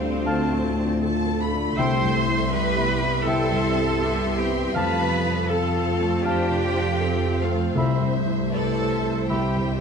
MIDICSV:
0, 0, Header, 1, 11, 480
1, 0, Start_track
1, 0, Key_signature, 0, "major"
1, 0, Tempo, 747198
1, 1138, Time_signature, 4, 2, 24, 8
1, 3534, Tempo, 763359
1, 6241, End_track
2, 0, Start_track
2, 0, Title_t, "Flute"
2, 0, Program_c, 0, 73
2, 167, Note_on_c, 0, 81, 68
2, 393, Note_off_c, 0, 81, 0
2, 1146, Note_on_c, 0, 79, 77
2, 1367, Note_off_c, 0, 79, 0
2, 2100, Note_on_c, 0, 79, 76
2, 2321, Note_off_c, 0, 79, 0
2, 3055, Note_on_c, 0, 81, 76
2, 3277, Note_off_c, 0, 81, 0
2, 4010, Note_on_c, 0, 81, 74
2, 4232, Note_off_c, 0, 81, 0
2, 4964, Note_on_c, 0, 83, 65
2, 5186, Note_off_c, 0, 83, 0
2, 5919, Note_on_c, 0, 83, 57
2, 6150, Note_off_c, 0, 83, 0
2, 6241, End_track
3, 0, Start_track
3, 0, Title_t, "Violin section"
3, 0, Program_c, 1, 48
3, 0, Note_on_c, 1, 72, 78
3, 881, Note_off_c, 1, 72, 0
3, 1142, Note_on_c, 1, 84, 72
3, 1596, Note_off_c, 1, 84, 0
3, 1627, Note_on_c, 1, 83, 86
3, 2099, Note_on_c, 1, 81, 92
3, 2101, Note_off_c, 1, 83, 0
3, 2817, Note_off_c, 1, 81, 0
3, 2825, Note_on_c, 1, 79, 71
3, 3060, Note_off_c, 1, 79, 0
3, 3062, Note_on_c, 1, 83, 90
3, 3527, Note_off_c, 1, 83, 0
3, 3546, Note_on_c, 1, 81, 67
3, 4015, Note_off_c, 1, 81, 0
3, 4022, Note_on_c, 1, 79, 87
3, 4732, Note_off_c, 1, 79, 0
3, 4736, Note_on_c, 1, 77, 61
3, 4969, Note_off_c, 1, 77, 0
3, 5444, Note_on_c, 1, 81, 82
3, 5899, Note_off_c, 1, 81, 0
3, 5921, Note_on_c, 1, 79, 62
3, 6241, Note_off_c, 1, 79, 0
3, 6241, End_track
4, 0, Start_track
4, 0, Title_t, "Violin section"
4, 0, Program_c, 2, 48
4, 0, Note_on_c, 2, 77, 58
4, 178, Note_off_c, 2, 77, 0
4, 184, Note_on_c, 2, 81, 64
4, 650, Note_off_c, 2, 81, 0
4, 668, Note_on_c, 2, 81, 78
4, 899, Note_off_c, 2, 81, 0
4, 909, Note_on_c, 2, 83, 72
4, 1145, Note_off_c, 2, 83, 0
4, 1147, Note_on_c, 2, 84, 67
4, 1149, Note_on_c, 2, 76, 75
4, 2084, Note_off_c, 2, 76, 0
4, 2086, Note_off_c, 2, 84, 0
4, 2093, Note_on_c, 2, 84, 70
4, 2094, Note_on_c, 2, 76, 72
4, 2564, Note_off_c, 2, 76, 0
4, 2564, Note_off_c, 2, 84, 0
4, 2582, Note_on_c, 2, 84, 63
4, 2585, Note_on_c, 2, 76, 71
4, 3049, Note_off_c, 2, 84, 0
4, 3050, Note_off_c, 2, 76, 0
4, 3056, Note_on_c, 2, 81, 68
4, 3062, Note_on_c, 2, 77, 74
4, 3522, Note_off_c, 2, 81, 0
4, 3525, Note_off_c, 2, 77, 0
4, 3530, Note_on_c, 2, 81, 71
4, 3533, Note_on_c, 2, 77, 70
4, 3997, Note_off_c, 2, 81, 0
4, 3999, Note_off_c, 2, 77, 0
4, 4006, Note_on_c, 2, 72, 71
4, 4008, Note_on_c, 2, 77, 67
4, 4477, Note_off_c, 2, 72, 0
4, 4484, Note_on_c, 2, 72, 73
4, 4963, Note_off_c, 2, 77, 0
4, 4968, Note_on_c, 2, 76, 65
4, 5420, Note_off_c, 2, 72, 0
4, 5434, Note_on_c, 2, 74, 69
4, 5669, Note_off_c, 2, 76, 0
4, 5677, Note_off_c, 2, 74, 0
4, 5677, Note_on_c, 2, 76, 57
4, 6241, Note_off_c, 2, 76, 0
4, 6241, End_track
5, 0, Start_track
5, 0, Title_t, "Cor anglais"
5, 0, Program_c, 3, 69
5, 170, Note_on_c, 3, 77, 67
5, 343, Note_off_c, 3, 77, 0
5, 1136, Note_on_c, 3, 76, 74
5, 1310, Note_off_c, 3, 76, 0
5, 2101, Note_on_c, 3, 76, 64
5, 2270, Note_off_c, 3, 76, 0
5, 3046, Note_on_c, 3, 77, 72
5, 3220, Note_off_c, 3, 77, 0
5, 4003, Note_on_c, 3, 77, 68
5, 4178, Note_off_c, 3, 77, 0
5, 4962, Note_on_c, 3, 76, 67
5, 5134, Note_off_c, 3, 76, 0
5, 5922, Note_on_c, 3, 76, 58
5, 6101, Note_off_c, 3, 76, 0
5, 6241, End_track
6, 0, Start_track
6, 0, Title_t, "Cello section"
6, 0, Program_c, 4, 48
6, 0, Note_on_c, 4, 60, 96
6, 899, Note_off_c, 4, 60, 0
6, 1135, Note_on_c, 4, 72, 109
6, 1592, Note_off_c, 4, 72, 0
6, 1620, Note_on_c, 4, 71, 115
6, 2096, Note_on_c, 4, 69, 111
6, 2098, Note_off_c, 4, 71, 0
6, 2815, Note_off_c, 4, 69, 0
6, 2816, Note_on_c, 4, 67, 86
6, 3055, Note_off_c, 4, 67, 0
6, 3056, Note_on_c, 4, 71, 102
6, 3523, Note_off_c, 4, 71, 0
6, 3532, Note_on_c, 4, 69, 97
6, 4008, Note_off_c, 4, 69, 0
6, 4009, Note_on_c, 4, 67, 109
6, 4725, Note_off_c, 4, 67, 0
6, 4727, Note_on_c, 4, 65, 80
6, 4964, Note_off_c, 4, 65, 0
6, 5443, Note_on_c, 4, 69, 110
6, 5898, Note_off_c, 4, 69, 0
6, 5926, Note_on_c, 4, 67, 89
6, 6241, Note_off_c, 4, 67, 0
6, 6241, End_track
7, 0, Start_track
7, 0, Title_t, "Harp"
7, 0, Program_c, 5, 46
7, 0, Note_on_c, 5, 50, 54
7, 0, Note_on_c, 5, 62, 52
7, 0, Note_on_c, 5, 65, 53
7, 0, Note_on_c, 5, 69, 52
7, 180, Note_on_c, 5, 57, 53
7, 411, Note_off_c, 5, 65, 0
7, 419, Note_on_c, 5, 65, 50
7, 647, Note_off_c, 5, 69, 0
7, 654, Note_on_c, 5, 69, 55
7, 887, Note_off_c, 5, 62, 0
7, 895, Note_on_c, 5, 62, 52
7, 1144, Note_on_c, 5, 48, 67
7, 1157, Note_off_c, 5, 62, 0
7, 1158, Note_off_c, 5, 69, 0
7, 1160, Note_off_c, 5, 65, 0
7, 1161, Note_off_c, 5, 50, 0
7, 1161, Note_off_c, 5, 57, 0
7, 1387, Note_on_c, 5, 64, 53
7, 1621, Note_on_c, 5, 67, 59
7, 1861, Note_on_c, 5, 59, 47
7, 2103, Note_on_c, 5, 55, 57
7, 2327, Note_off_c, 5, 64, 0
7, 2334, Note_on_c, 5, 64, 54
7, 2565, Note_off_c, 5, 67, 0
7, 2573, Note_on_c, 5, 67, 59
7, 2807, Note_off_c, 5, 59, 0
7, 2814, Note_on_c, 5, 59, 53
7, 3053, Note_on_c, 5, 53, 73
7, 3073, Note_off_c, 5, 64, 0
7, 3073, Note_off_c, 5, 67, 0
7, 3074, Note_off_c, 5, 59, 0
7, 3077, Note_off_c, 5, 48, 0
7, 3077, Note_off_c, 5, 55, 0
7, 3292, Note_on_c, 5, 69, 59
7, 3533, Note_on_c, 5, 65, 56
7, 3770, Note_on_c, 5, 57, 45
7, 4003, Note_off_c, 5, 65, 0
7, 4011, Note_on_c, 5, 65, 55
7, 4240, Note_off_c, 5, 69, 0
7, 4248, Note_on_c, 5, 69, 54
7, 4482, Note_off_c, 5, 65, 0
7, 4489, Note_on_c, 5, 65, 58
7, 4717, Note_off_c, 5, 57, 0
7, 4725, Note_on_c, 5, 57, 54
7, 4965, Note_on_c, 5, 48, 61
7, 4981, Note_off_c, 5, 53, 0
7, 4982, Note_off_c, 5, 57, 0
7, 4982, Note_off_c, 5, 69, 0
7, 4983, Note_off_c, 5, 65, 0
7, 5211, Note_on_c, 5, 64, 44
7, 5440, Note_on_c, 5, 71, 48
7, 5678, Note_on_c, 5, 60, 42
7, 5923, Note_on_c, 5, 55, 47
7, 6165, Note_off_c, 5, 64, 0
7, 6172, Note_on_c, 5, 64, 45
7, 6241, Note_off_c, 5, 48, 0
7, 6241, Note_off_c, 5, 55, 0
7, 6241, Note_off_c, 5, 60, 0
7, 6241, Note_off_c, 5, 64, 0
7, 6241, Note_off_c, 5, 71, 0
7, 6241, End_track
8, 0, Start_track
8, 0, Title_t, "Grand piano"
8, 0, Program_c, 6, 0
8, 0, Control_c, 6, 64, 127
8, 0, Note_on_c, 6, 38, 63
8, 0, Note_on_c, 6, 45, 42
8, 0, Note_on_c, 6, 62, 51
8, 0, Note_on_c, 6, 65, 45
8, 0, Note_on_c, 6, 69, 53
8, 10, Note_off_c, 6, 62, 0
8, 10, Note_on_c, 6, 62, 55
8, 111, Note_off_c, 6, 69, 0
8, 147, Note_off_c, 6, 38, 0
8, 173, Note_on_c, 6, 38, 59
8, 268, Note_off_c, 6, 62, 0
8, 332, Note_off_c, 6, 45, 0
8, 332, Note_on_c, 6, 45, 46
8, 499, Note_on_c, 6, 62, 54
8, 589, Note_off_c, 6, 45, 0
8, 653, Note_off_c, 6, 65, 0
8, 653, Note_on_c, 6, 65, 51
8, 754, Note_off_c, 6, 62, 0
8, 814, Note_on_c, 6, 69, 53
8, 912, Note_off_c, 6, 65, 0
8, 985, Note_on_c, 6, 62, 54
8, 1073, Note_off_c, 6, 69, 0
8, 1112, Note_off_c, 6, 38, 0
8, 1142, Note_off_c, 6, 62, 0
8, 1147, Note_on_c, 6, 36, 69
8, 1151, Control_c, 6, 64, 0
8, 1245, Control_c, 6, 64, 127
8, 1304, Note_on_c, 6, 43, 46
8, 1467, Note_on_c, 6, 64, 49
8, 1558, Note_off_c, 6, 43, 0
8, 1621, Note_on_c, 6, 67, 49
8, 1718, Note_off_c, 6, 64, 0
8, 1782, Note_on_c, 6, 59, 59
8, 1875, Note_off_c, 6, 67, 0
8, 1939, Note_on_c, 6, 64, 64
8, 2036, Note_off_c, 6, 59, 0
8, 2076, Note_off_c, 6, 36, 0
8, 2099, Note_on_c, 6, 36, 57
8, 2194, Note_off_c, 6, 64, 0
8, 2260, Note_on_c, 6, 43, 51
8, 2424, Note_on_c, 6, 64, 54
8, 2513, Note_off_c, 6, 43, 0
8, 2571, Note_on_c, 6, 67, 54
8, 2676, Note_off_c, 6, 64, 0
8, 2737, Note_on_c, 6, 59, 52
8, 2830, Note_off_c, 6, 67, 0
8, 2894, Note_on_c, 6, 64, 55
8, 2992, Note_off_c, 6, 59, 0
8, 3031, Note_off_c, 6, 36, 0
8, 3054, Note_off_c, 6, 64, 0
8, 3058, Note_on_c, 6, 41, 75
8, 3068, Control_c, 6, 64, 0
8, 3153, Control_c, 6, 64, 127
8, 3223, Note_on_c, 6, 48, 46
8, 3377, Note_on_c, 6, 65, 54
8, 3473, Note_off_c, 6, 48, 0
8, 3534, Note_on_c, 6, 69, 53
8, 3629, Note_off_c, 6, 65, 0
8, 3695, Note_on_c, 6, 65, 52
8, 3786, Note_off_c, 6, 69, 0
8, 3852, Note_on_c, 6, 57, 58
8, 3947, Note_off_c, 6, 65, 0
8, 3984, Note_off_c, 6, 41, 0
8, 4012, Note_on_c, 6, 41, 58
8, 4105, Note_off_c, 6, 57, 0
8, 4162, Note_on_c, 6, 48, 49
8, 4328, Note_on_c, 6, 65, 52
8, 4420, Note_off_c, 6, 48, 0
8, 4481, Note_on_c, 6, 69, 53
8, 4582, Note_off_c, 6, 65, 0
8, 4636, Note_on_c, 6, 65, 58
8, 4737, Note_off_c, 6, 69, 0
8, 4798, Note_on_c, 6, 57, 53
8, 4895, Note_off_c, 6, 65, 0
8, 4940, Note_off_c, 6, 41, 0
8, 4950, Note_on_c, 6, 36, 73
8, 4960, Note_off_c, 6, 57, 0
8, 4975, Control_c, 6, 64, 0
8, 5090, Control_c, 6, 64, 127
8, 5112, Note_on_c, 6, 43, 43
8, 5273, Note_on_c, 6, 64, 48
8, 5372, Note_off_c, 6, 43, 0
8, 5427, Note_on_c, 6, 71, 45
8, 5532, Note_off_c, 6, 64, 0
8, 5603, Note_on_c, 6, 72, 52
8, 5689, Note_off_c, 6, 71, 0
8, 5762, Note_on_c, 6, 64, 50
8, 5859, Note_off_c, 6, 72, 0
8, 5891, Note_off_c, 6, 36, 0
8, 5930, Note_on_c, 6, 36, 46
8, 6021, Note_off_c, 6, 64, 0
8, 6091, Note_on_c, 6, 43, 42
8, 6241, Note_off_c, 6, 36, 0
8, 6241, Note_off_c, 6, 43, 0
8, 6241, End_track
9, 0, Start_track
9, 0, Title_t, "French horn section"
9, 0, Program_c, 7, 60
9, 0, Note_on_c, 7, 57, 81
9, 0, Note_on_c, 7, 65, 72
9, 1112, Note_off_c, 7, 65, 0
9, 1114, Note_off_c, 7, 57, 0
9, 1135, Note_on_c, 7, 64, 68
9, 1137, Note_on_c, 7, 55, 79
9, 3028, Note_off_c, 7, 64, 0
9, 3045, Note_on_c, 7, 65, 78
9, 3506, Note_off_c, 7, 55, 0
9, 3539, Note_on_c, 7, 53, 74
9, 4861, Note_off_c, 7, 53, 0
9, 4861, Note_off_c, 7, 65, 0
9, 4968, Note_on_c, 7, 64, 65
9, 4969, Note_on_c, 7, 55, 65
9, 6241, Note_off_c, 7, 55, 0
9, 6241, Note_off_c, 7, 64, 0
9, 6241, End_track
10, 0, Start_track
10, 0, Title_t, "Viola section"
10, 0, Program_c, 8, 48
10, 0, Note_on_c, 8, 55, 66
10, 0, Note_on_c, 8, 60, 75
10, 175, Note_off_c, 8, 55, 0
10, 181, Note_on_c, 8, 57, 70
10, 412, Note_off_c, 8, 57, 0
10, 419, Note_on_c, 8, 57, 73
10, 636, Note_off_c, 8, 60, 0
10, 649, Note_off_c, 8, 57, 0
10, 654, Note_on_c, 8, 69, 71
10, 657, Note_on_c, 8, 57, 76
10, 1135, Note_off_c, 8, 69, 0
10, 1142, Note_on_c, 8, 69, 63
10, 1612, Note_off_c, 8, 57, 0
10, 1612, Note_off_c, 8, 69, 0
10, 1620, Note_on_c, 8, 57, 69
10, 1623, Note_on_c, 8, 67, 66
10, 1854, Note_off_c, 8, 57, 0
10, 1862, Note_on_c, 8, 55, 66
10, 2099, Note_off_c, 8, 55, 0
10, 2099, Note_off_c, 8, 67, 0
10, 2102, Note_on_c, 8, 60, 75
10, 2103, Note_on_c, 8, 69, 76
10, 2569, Note_off_c, 8, 69, 0
10, 2577, Note_on_c, 8, 59, 77
10, 2577, Note_on_c, 8, 67, 73
10, 2578, Note_off_c, 8, 60, 0
10, 2814, Note_on_c, 8, 60, 66
10, 2817, Note_off_c, 8, 59, 0
10, 3050, Note_off_c, 8, 60, 0
10, 3053, Note_on_c, 8, 57, 70
10, 3055, Note_on_c, 8, 69, 71
10, 3056, Note_off_c, 8, 67, 0
10, 3286, Note_on_c, 8, 59, 67
10, 3292, Note_off_c, 8, 57, 0
10, 3524, Note_off_c, 8, 59, 0
10, 3533, Note_on_c, 8, 60, 65
10, 3989, Note_off_c, 8, 69, 0
10, 4006, Note_on_c, 8, 72, 71
10, 4007, Note_on_c, 8, 62, 77
10, 4008, Note_off_c, 8, 60, 0
10, 4240, Note_off_c, 8, 72, 0
10, 4248, Note_on_c, 8, 72, 70
10, 4486, Note_off_c, 8, 62, 0
10, 4487, Note_off_c, 8, 72, 0
10, 4492, Note_on_c, 8, 60, 70
10, 4495, Note_on_c, 8, 69, 72
10, 4724, Note_off_c, 8, 69, 0
10, 4732, Note_on_c, 8, 69, 64
10, 4962, Note_off_c, 8, 69, 0
10, 4966, Note_off_c, 8, 60, 0
10, 4973, Note_on_c, 8, 72, 64
10, 4974, Note_on_c, 8, 60, 55
10, 5203, Note_off_c, 8, 60, 0
10, 5213, Note_on_c, 8, 57, 62
10, 5444, Note_off_c, 8, 72, 0
10, 5451, Note_on_c, 8, 72, 59
10, 5924, Note_on_c, 8, 55, 59
10, 5928, Note_off_c, 8, 57, 0
10, 6241, Note_off_c, 8, 55, 0
10, 6241, Note_off_c, 8, 72, 0
10, 6241, End_track
11, 0, Start_track
11, 0, Title_t, "Double bass section"
11, 0, Program_c, 10, 48
11, 0, Note_on_c, 10, 38, 72
11, 1114, Note_off_c, 10, 38, 0
11, 1139, Note_on_c, 10, 36, 69
11, 3030, Note_off_c, 10, 36, 0
11, 3059, Note_on_c, 10, 41, 70
11, 4939, Note_off_c, 10, 41, 0
11, 4967, Note_on_c, 10, 36, 74
11, 6241, Note_off_c, 10, 36, 0
11, 6241, End_track
0, 0, End_of_file